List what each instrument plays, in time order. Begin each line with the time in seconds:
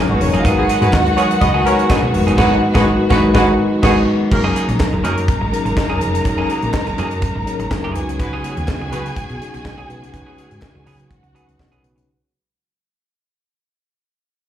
Already playing: string section C#3 F#3 G#3 A#3 D#4, clean electric guitar F#3, tine electric piano F#3 C#4 D#4 G#4 A#4
0.09 fingered electric bass G#1, horn section D#3 C#4 F#4, violin section B3 B4, muted clean electric guitar stroke
0.20 fingered electric bass F1, tine electric piano F#3 C#4 D#4 G#4 C#5, violin section C#4 C#5, muted clean electric guitar stroke, open hi-hat
0.28 violin section D#4 D#5
0.33 fingered electric bass F#1, clean electric guitar F#3 A#3 D#4 G#4, violin section F4 F5, closed hi-hat
0.44 fingered electric bass G#1, string section D#3 B3 F#4, clean electric guitar F#3 B3 D#4 G#4, tine electric piano G#3 D#4 F#4 A#4 B4, violin section F#4 F#5, kick, closed hi-hat
0.57 horn section D#3 B3 G#4
0.69 clean electric guitar F#3 B3 D#4 G#4, closed hi-hat
0.82 fingered electric bass G#2, clean electric guitar F#3 B3 D#4 G#4, horn section G#3 F#4 B4, closed hi-hat
0.93 fingered electric bass D#2, kick, snare, clap
1.06 muted clean electric guitar stroke, closed hi-hat
1.17 clean electric guitar F#3 B3 D#4 G#4, horn section C#4 A#4 C#5, closed hi-hat
1.30 muted clean electric guitar stroke, closed hi-hat
1.41 fingered electric bass C#2, horn section B3 G#4 D#5, muted clean electric guitar stroke, kick, closed hi-hat
1.54 clean electric guitar F#3 B3 D#4 G#4
1.65 clean electric guitar F#3 B3 D#4 A#4, tine electric piano G#3 D#4 F#4 A#4 B4, horn section C#4 A#4 C#5, closed hi-hat
1.78 muted clean electric guitar stroke, closed hi-hat
1.89 clean electric guitar F#3 B3 D#4 G#4, kick, snare, clap
2.02 fingered electric bass B1, muted clean electric guitar stroke
2.13 fingered electric bass F1, tine electric piano G#3 D#4 F#4 A#4 B4, muted clean electric guitar stroke, open hi-hat
2.27 fingered electric bass F#1, clean electric guitar F#3 B3 D#4 G#4, closed hi-hat
2.37 fingered electric bass G#1, clean electric guitar F#3 B3 D#4 G#4, tine electric piano G#3 D#4 F#4 B4, horn section G#3 F#4 B4, violin section F#4 F#5, kick, snare, crash
2.74 fingered electric bass G#1, clean electric guitar F#3 B3 D#4 G#4, tine electric piano G#3 D#4 F#4 B4, horn section G#3 F#4 B4, violin section F#4 F#5, kick, snare
3.10 fingered electric bass G#1, clean electric guitar F#3 B3 D#4 G#4, tine electric piano G#3 D#4 F#4 B4, horn section G#3 F#4 B4, violin section F#4 F#5, kick, snare
3.34 fingered electric bass G#1, clean electric guitar F#3 B3 D#4 G#4, tine electric piano G#3 D#4 F#4 B4, horn section G#3 F#4 B4, violin section F#4 F#5, kick, snare
3.82 fingered electric bass G#1, horn section D#3 B3 G#4, clean electric guitar F#3 B3 D#4 G#4, tine electric piano G#3 D#4 F#4 B4, violin section F#4 F#5, kick, snare, crash
4.31 fingered electric bass F#1, string section C#3 F#3 G#3 A#3 D#4, horn section D#3 C#4 A#4, tine electric piano F#3 C#4 D#4 G#4 A#4, violin section A#4 A#5, muted clean electric guitar stroke, kick, crash
4.44 clean electric guitar F#3 A#3 D#4 G#4
4.56 clean electric guitar F#3 A#3 D#4 G#4, closed hi-hat
4.68 fingered electric bass A#1, muted clean electric guitar stroke, closed hi-hat
4.80 muted clean electric guitar stroke, kick, snare, clap
4.92 fingered electric bass F#1, muted clean electric guitar stroke
5.04 fingered electric bass F#2, horn section D#3 C#4 A#4, clean electric guitar F#3 A#3 D#4 G#4, closed hi-hat
5.17 muted clean electric guitar stroke, closed hi-hat
5.28 muted clean electric guitar stroke, kick, closed hi-hat
5.41 fingered electric bass G#1, muted clean electric guitar stroke
5.52 tine electric piano F#3 C#4 D#4 G#4 A#4, closed hi-hat
5.65 fingered electric bass G#1, muted clean electric guitar stroke, closed hi-hat
5.77 fingered electric bass F#1, muted clean electric guitar stroke, kick, snare, clap
5.89 clean electric guitar F#3 A#3 D#4 G#4
6.00 fingered electric bass F1, tine electric piano F#3 C#4 D#4 G#4 A#4, muted clean electric guitar stroke, closed hi-hat
6.14 muted clean electric guitar stroke, closed hi-hat
6.24 fingered electric bass F#1, tine electric piano F#3 C#4 D#4 G#4 A4, muted clean electric guitar stroke, kick, closed hi-hat
6.32 tine electric piano A#4
6.38 clean electric guitar F#3 A#3 D#4 G#4
6.49 clean electric guitar F#3 A#3 D#4 G#4, closed hi-hat
6.62 fingered electric bass A#1, muted clean electric guitar stroke, closed hi-hat
6.74 muted clean electric guitar stroke, kick, snare, clap
6.86 fingered electric bass F#1, muted clean electric guitar stroke, closed hi-hat
6.98 fingered electric bass F#2, clean electric guitar F#3 A#3 D#4 G#4, closed hi-hat
7.11 muted clean electric guitar stroke, closed hi-hat
7.22 muted clean electric guitar stroke, kick, closed hi-hat
7.35 fingered electric bass G#1, muted clean electric guitar stroke
7.46 tine electric piano F#3 C#4 D#4 G#4 A#4, closed hi-hat
7.59 fingered electric bass G#1, muted clean electric guitar stroke, closed hi-hat
7.71 fingered electric bass F#1, muted clean electric guitar stroke, kick, snare, clap
7.84 clean electric guitar F#3 A#3 D#4 G#4
7.94 fingered electric bass C#2, tine electric piano C#3 C#4 D#4 F4 B4, string section G#3 B3 F#4, violin section G#4 G#5, muted clean electric guitar stroke, closed hi-hat
8.01 tine electric piano F#4
8.09 muted clean electric guitar stroke, closed hi-hat
8.19 horn section G#3 F#4 B4, muted clean electric guitar stroke, kick, closed hi-hat
8.33 clean electric guitar F#3 B3 C#4 G#4
8.44 clean electric guitar F#3 B3 C#4 G#4, closed hi-hat
8.57 fingered electric bass D#2, muted clean electric guitar stroke, closed hi-hat
8.68 muted clean electric guitar stroke, kick, snare, clap
8.81 fingered electric bass C#2, muted clean electric guitar stroke
8.92 fingered electric bass C#3, clean electric guitar F#3 B3 C#4 G#4, horn section G#3 F#4 B4, closed hi-hat
9.06 muted clean electric guitar stroke, closed hi-hat
9.16 muted clean electric guitar stroke, kick, closed hi-hat
9.29 fingered electric bass B2, muted clean electric guitar stroke, closed hi-hat
9.40 tine electric piano C#3 C#4 D#4 F#4 G#4, closed hi-hat
9.54 fingered electric bass B1, muted clean electric guitar stroke, closed hi-hat
9.65 fingered electric bass B1, muted clean electric guitar stroke, kick, snare, clap
9.78 clean electric guitar F#3 B3 C#4 G#4
9.88 fingered electric bass B1, string section A#2, tine electric piano C#3 C#4 D#4 F#4 B4, muted clean electric guitar stroke, closed hi-hat
10.03 muted clean electric guitar stroke, closed hi-hat
10.12 fingered electric bass C#2, tine electric piano C#3 C#4 D#4 F#4 B4, muted clean electric guitar stroke, kick, closed hi-hat
10.26 clean electric guitar F#3 B3 C#4 G#4
10.38 clean electric guitar F#3 B3 C#4 G#4, closed hi-hat
10.51 fingered electric bass G#2, muted clean electric guitar stroke, closed hi-hat
10.62 muted clean electric guitar stroke, kick, snare, clap
10.75 fingered electric bass C#2, muted clean electric guitar stroke
10.86 fingered electric bass C#3, clean electric guitar F#3 B3 C#4 G#4, open hi-hat
10.99 muted clean electric guitar stroke, closed hi-hat
11.10 violin section F#4 F#5, muted clean electric guitar stroke, kick, closed hi-hat
11.23 fingered electric bass C#2, muted clean electric guitar stroke, closed hi-hat
11.34 tine electric piano C#3 C#4 D#4 F#4 B4, clean electric guitar F#3 B3 C#4 G#4, closed hi-hat
11.47 fingered electric bass C#2, muted clean electric guitar stroke, closed hi-hat
11.59 fingered electric bass B1, muted clean electric guitar stroke, kick, snare, clap
11.72 clean electric guitar F#3 B3 C#4 G#4, closed hi-hat
11.82 fingered electric bass B1, tine electric piano C#3 C#4 D#4 F#4 B4, muted clean electric guitar stroke, closed hi-hat
11.96 muted clean electric guitar stroke, closed hi-hat